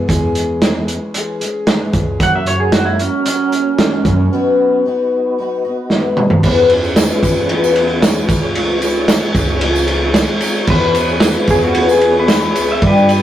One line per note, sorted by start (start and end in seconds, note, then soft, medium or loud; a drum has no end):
0.08 0.95 E2 loud
0.08 0.59 E3 medium
0.08 0.61 G#3 medium
0.08 0.63 C#4 loud
0.08 0.63 G#4 loud
0.08 kick loud
0.08 closed hi-hat medium
0.35 closed hi-hat medium
0.60 1.13 E3 medium
0.60 1.14 G#3 medium
0.60 1.16 C#4 medium
0.60 1.16 G#4 medium
0.60 snare loud
0.60 closed hi-hat loud
0.88 closed hi-hat medium
1.14 1.41 E3 medium
1.14 1.42 G#3 medium
1.14 1.40 C#4 medium
1.14 1.38 G#4 medium
1.14 closed hi-hat loud
1.40 1.67 G#3 soft
1.40 1.67 C#4 medium
1.40 1.67 G#4 medium
1.40 closed hi-hat medium
1.66 1.94 E3 medium
1.66 1.94 G#3 medium
1.66 1.95 C#4 medium
1.66 1.93 G#4 medium
1.66 snare loud
1.66 closed hi-hat medium
1.93 2.15 C#2 loud
1.93 2.21 G#3 soft
1.93 2.21 C#4 soft
1.93 2.21 G#4 medium
1.93 kick medium
1.93 closed hi-hat medium
2.19 3.06 F#2 loud
2.19 2.73 F#2 medium
2.19 2.74 C#3 medium
2.19 2.72 F#3 medium
2.19 4.29 A#3 medium
2.19 2.73 A#3 medium
2.19 4.29 C#4 medium
2.19 2.74 C#4 medium
2.19 4.29 F#4 medium
2.19 2.76 F#4 medium
2.19 4.29 A#4 medium
2.19 kick loud
2.19 closed hi-hat medium
2.23 2.35 F#5 loud
2.36 2.48 E5 medium
2.46 2.60 C#5 medium
2.46 closed hi-hat medium
2.60 2.73 G#4 medium
2.72 3.25 F#3 medium
2.72 3.26 A#3 medium
2.72 3.27 C#4 medium
2.72 2.87 F#4 medium
2.72 snare loud
2.72 closed hi-hat medium
2.76 3.28 F#4 medium
2.86 2.99 E4 medium
2.99 3.25 C#4 medium
2.99 closed hi-hat medium
3.25 3.52 F#3 medium
3.25 3.53 A#3 medium
3.25 4.81 C#4 loud
3.25 3.52 C#4 medium
3.25 3.51 F#4 medium
3.25 closed hi-hat medium
3.52 3.78 F#3 medium
3.52 3.79 A#3 medium
3.52 3.80 C#4 medium
3.52 3.79 F#4 medium
3.52 closed hi-hat medium
3.78 4.06 F#3 medium
3.78 4.06 A#3 medium
3.78 4.06 C#4 medium
3.78 4.05 F#4 medium
3.78 snare loud
3.78 closed hi-hat medium
4.05 4.27 F#2 loud
4.05 4.33 A#3 medium
4.05 4.33 C#4 soft
4.05 4.32 F#4 medium
4.05 kick medium
4.05 closed hi-hat medium
4.09 4.32 F#3 soft
4.32 4.85 B2 medium
4.32 4.84 F#3 medium
4.32 6.13 B3 medium
4.32 4.85 B3 medium
4.32 6.41 D#4 medium
4.32 4.86 D#4 medium
4.32 6.41 F#4 medium
4.32 4.86 F#4 medium
4.32 6.32 B4 medium
4.85 5.37 F#3 medium
4.85 5.38 B3 medium
4.85 5.39 D#4 medium
4.85 5.39 F#4 medium
5.38 5.65 F#3 medium
5.38 5.65 B3 medium
5.38 5.66 D#4 medium
5.38 5.64 F#4 medium
5.65 5.92 B3 soft
5.65 5.92 D#4 medium
5.65 5.91 F#4 medium
5.90 6.18 F#3 medium
5.90 6.18 B3 medium
5.90 6.19 D#4 medium
5.90 snare medium
5.95 6.17 F#4 medium
6.12 6.34 A3 medium
6.12 6.36 B3 medium
6.17 6.37 C4 medium
6.17 6.38 D4 medium
6.17 6.45 D#4 medium
6.17 6.44 F#4 medium
6.17 mid tom medium
6.22 6.45 B3 soft
6.22 6.40 E4 medium
6.26 6.41 F4 medium
6.26 6.43 G4 medium
6.30 6.44 A4 medium
6.30 6.42 B4 medium
6.30 floor tom medium
6.37 6.47 C5 medium
6.37 6.48 D5 medium
6.43 7.08 E2 medium
6.43 6.70 E2 medium
6.43 6.71 B2 medium
6.43 6.71 E3 loud
6.43 6.71 B3 medium
6.43 8.27 C#4 medium
6.43 6.71 C#4 medium
6.43 8.27 E4 medium
6.43 8.27 G#4 medium
6.43 6.69 G#4 medium
6.43 8.27 B4 medium
6.43 kick loud
6.43 crash loud
6.69 6.96 B3 medium
6.69 6.98 C#4 medium
6.69 6.97 G#4 medium
6.69 ride medium
6.74 6.95 E3 soft
6.84 tambourine soft
6.96 7.51 E3 medium
6.96 7.50 B3 medium
6.96 7.52 C#4 medium
6.96 snare loud
6.96 ride loud
6.96 tambourine loud
7.00 7.52 G#4 medium
7.23 8.29 E2 loud
7.23 kick medium
7.23 ride medium
7.23 tambourine medium
7.49 8.03 E2 medium
7.49 8.03 B2 medium
7.49 8.02 E3 medium
7.49 8.03 B3 loud
7.49 8.04 C#4 loud
7.49 8.05 G#4 medium
7.49 ride loud
7.64 tambourine medium
7.76 ride medium
8.02 8.29 E3 medium
8.02 8.30 B3 medium
8.02 8.30 C#4 medium
8.02 8.27 G#4 medium
8.02 snare loud
8.02 ride medium
8.02 tambourine loud
8.28 9.15 C#2 medium
8.28 8.55 G#3 soft
8.28 8.56 D#4 soft
8.28 8.55 E4 medium
8.28 10.67 G#4 medium
8.28 10.67 C#5 medium
8.28 kick loud
8.28 ride medium
8.28 tambourine medium
8.55 8.82 C#3 medium
8.55 8.82 E3 medium
8.55 8.83 G#3 medium
8.55 8.81 D#4 loud
8.55 8.79 E4 loud
8.55 ride loud
8.81 9.08 G#3 soft
8.81 9.08 D#4 medium
8.81 9.08 E4 medium
8.81 ride medium
8.81 tambourine medium
8.95 tambourine soft
9.07 9.61 E3 medium
9.07 9.62 G#3 medium
9.07 9.62 D#4 medium
9.07 9.63 E4 medium
9.07 snare loud
9.07 ride loud
9.07 tambourine loud
9.35 10.21 C#2 medium
9.35 kick medium
9.35 ride medium
9.35 tambourine medium
9.61 10.15 C#3 medium
9.61 10.13 E3 medium
9.61 10.14 G#3 loud
9.61 10.15 D#4 medium
9.61 10.16 E4 medium
9.61 ride loud
9.76 tambourine medium
9.87 ride medium
10.14 10.42 E3 medium
10.14 10.42 G#3 medium
10.14 10.42 D#4 medium
10.14 10.40 E4 medium
10.14 snare loud
10.14 ride loud
10.14 tambourine medium
10.41 10.69 D#4 medium
10.41 10.69 E4 medium
10.41 ride medium
10.41 tambourine medium
10.45 10.69 G#3 soft
10.55 tambourine soft
10.67 10.95 E2 medium
10.67 11.33 E2 loud
10.67 10.95 B2 medium
10.67 10.95 E3 medium
10.67 10.95 B3 medium
10.67 10.95 C#4 loud
10.67 12.80 E4 medium
10.67 12.81 G#4 medium
10.67 10.93 G#4 loud
10.67 12.80 B4 medium
10.67 11.47 B4 medium
10.67 12.81 C#5 medium
10.67 kick loud
10.67 crash medium
10.94 11.20 E3 soft
10.94 11.22 B3 medium
10.94 11.22 C#4 soft
10.94 11.21 G#4 medium
10.94 ride medium
10.94 tambourine medium
11.10 tambourine soft
11.20 11.75 E3 medium
11.20 11.76 B3 medium
11.20 11.76 C#4 medium
11.20 snare loud
11.20 ride loud
11.20 tambourine medium
11.25 11.77 G#4 medium
11.47 12.56 E2 medium
11.47 11.63 G#4 medium
11.47 kick medium
11.47 ride medium
11.47 tambourine medium
11.64 11.89 F#4 medium
11.74 12.29 E2 medium
11.74 12.30 B2 medium
11.74 12.26 E3 medium
11.74 12.29 B3 loud
11.74 12.29 C#4 medium
11.74 12.30 G#4 loud
11.74 ride loud
11.89 12.16 G#4 medium
11.89 tambourine medium
12.01 ride medium
12.20 12.70 B4 loud
12.27 12.55 E3 medium
12.27 12.56 B3 medium
12.27 12.57 C#4 medium
12.27 12.55 G#4 medium
12.27 snare loud
12.27 ride loud
12.27 tambourine medium
12.55 12.78 C#2 medium
12.55 12.84 E3 soft
12.55 12.84 B3 soft
12.55 12.84 C#4 soft
12.55 12.83 G#4 medium
12.55 ride medium
12.55 tambourine medium
12.70 12.84 E5 medium
12.70 tambourine soft
12.82 13.22 G2 loud
12.82 13.10 G2 medium
12.82 13.10 D3 medium
12.82 13.10 G3 medium
12.82 13.10 B3 medium
12.82 13.22 D4 medium
12.82 13.09 D4 loud
12.82 13.22 G4 medium
12.82 13.08 G4 loud
12.82 13.22 B4 medium
12.82 13.22 D5 medium
12.82 kick loud
12.82 ride loud
12.87 13.22 B4 loud
12.98 tambourine soft
13.09 13.22 G3 soft
13.09 13.22 B3 soft
13.09 13.22 D4 soft
13.09 13.22 G4 medium
13.09 ride medium
13.09 tambourine medium